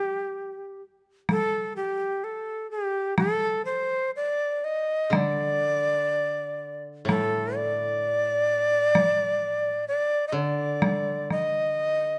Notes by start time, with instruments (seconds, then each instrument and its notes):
Already playing: shakuhachi G4
1.29 shakuhachi A4, taiko rim, taiko high
1.76 shakuhachi G4
2.24 shakuhachi A4
2.71 shakuhachi G4
3.18 shakuhachi A4, taiko rim, taiko high
3.65 shakuhachi C5
4.16 shakuhachi D5
4.64 shakuhachi D#5
5.10 koto D3, taiko rim, taiko high
5.16 shakuhachi D5
7.05 koto A2, shakuhachi A4, taiko rim, taiko high
7.56 shakuhachi D5
8.95 taiko rim, taiko high
9.88 shakuhachi D5
10.28 shakuhachi D#5
10.32 koto D3, shakuhachi D5
10.82 taiko rim, taiko high
11.30 shakuhachi D#5, taiko rim, taiko high